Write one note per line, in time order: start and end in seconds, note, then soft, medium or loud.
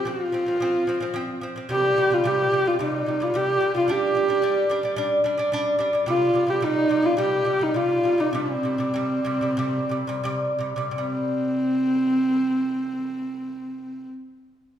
0.05 0.27 F3 medium
0.05 0.28 C4 medium
0.05 1.44 F4 medium
0.32 0.44 F3 medium
0.32 0.45 C4 medium
0.46 0.58 F3 medium
0.46 0.59 C4 medium
0.60 0.82 F3 medium
0.60 0.83 C4 loud
0.87 0.99 F3 medium
0.87 0.99 C4 medium
1.00 1.12 F3 medium
1.00 1.13 C4 medium
1.14 1.37 F3 loud
1.14 1.38 C4 loud
1.41 1.53 F3 medium
1.41 1.54 C4 medium
1.56 1.67 F3 medium
1.56 1.68 C4 medium
1.69 1.91 C3 loud
1.69 1.92 G3 medium
1.69 2.15 G4 loud
1.96 2.08 C3 medium
1.96 2.09 G3 medium
2.10 2.22 C3 medium
2.10 2.22 G3 medium
2.10 2.29 F4 medium
2.24 2.46 C3 medium
2.24 2.47 G3 loud
2.24 2.69 G4 loud
2.52 2.63 C3 medium
2.52 2.64 G3 medium
2.66 2.77 C3 medium
2.66 2.78 G3 medium
2.66 2.81 F4 medium
2.79 3.01 C3 medium
2.79 3.02 G3 loud
2.79 3.25 D#4 medium
3.06 3.18 C3 medium
3.06 3.19 G3 medium
3.20 3.31 C3 medium
3.20 3.32 G3 medium
3.20 3.38 F4 medium
3.34 3.56 C3 medium
3.34 3.57 G3 loud
3.34 3.76 G4 loud
3.61 3.72 C3 medium
3.61 3.73 G3 medium
3.74 3.86 C3 medium
3.74 3.87 G3 medium
3.74 3.93 F4 medium
3.88 4.10 G3 loud
3.88 4.11 D4 loud
3.88 5.00 G4 medium
4.15 4.27 G3 medium
4.15 4.27 D4 medium
4.28 4.40 G3 medium
4.28 4.41 D4 medium
4.42 4.65 G3 medium
4.42 4.65 D4 loud
4.70 4.81 G3 medium
4.70 4.82 D4 loud
4.83 4.95 G3 medium
4.83 4.96 D4 medium
4.96 5.19 G3 loud
4.96 5.20 D4 loud
5.24 5.36 G3 medium
5.24 5.37 D4 loud
5.38 5.49 G3 medium
5.38 5.50 D4 loud
5.52 5.74 G3 medium
5.52 5.75 D4 loud
5.79 5.90 G3 medium
5.79 5.91 D4 medium
5.93 6.04 G3 medium
5.93 6.05 D4 medium
6.06 6.29 C3 medium
6.06 6.30 G3 loud
6.06 6.51 F4 loud
6.34 6.45 C3 medium
6.34 6.46 G3 medium
6.47 6.59 C3 medium
6.47 6.59 G3 medium
6.47 6.65 G4 medium
6.61 6.84 C3 medium
6.61 6.85 G3 loud
6.61 7.07 D#4 loud
6.89 7.01 C3 medium
6.89 7.02 G3 medium
7.02 7.14 C3 medium
7.02 7.15 G3 medium
7.02 7.19 F4 loud
7.17 7.40 C3 medium
7.17 7.41 G3 loud
7.17 7.64 G4 loud
7.45 7.57 C3 medium
7.45 7.58 G3 medium
7.59 7.71 C3 medium
7.59 7.72 G3 medium
7.59 7.77 D#4 medium
7.74 7.98 C3 medium
7.74 7.99 G3 medium
7.74 8.21 F4 loud
8.03 8.15 C3 medium
8.03 8.16 G3 medium
8.18 8.30 C3 medium
8.18 8.31 G3 medium
8.18 8.34 D#4 medium
8.33 8.57 C3 medium
8.33 8.58 G3 loud
8.33 10.55 C4 medium
8.63 8.75 C3 medium
8.63 8.76 G3 medium
8.78 8.91 C3 medium
8.78 8.92 G3 medium
8.94 9.19 C3 medium
8.94 9.20 G3 loud
9.25 9.38 C3 medium
9.25 9.38 G3 loud
9.41 9.54 C3 medium
9.41 9.55 G3 medium
9.57 9.83 C3 loud
9.57 9.84 G3 loud
9.89 10.03 C3 medium
9.89 10.04 G3 medium
10.07 10.21 C3 medium
10.07 10.21 G3 loud
10.24 10.51 C3 loud
10.24 10.52 G3 loud
10.59 10.73 C3 medium
10.59 10.74 G3 medium
10.76 10.90 C3 medium
10.76 10.91 G3 medium
10.91 14.04 C3 medium
10.95 14.11 G3 medium
10.95 14.08 C4 medium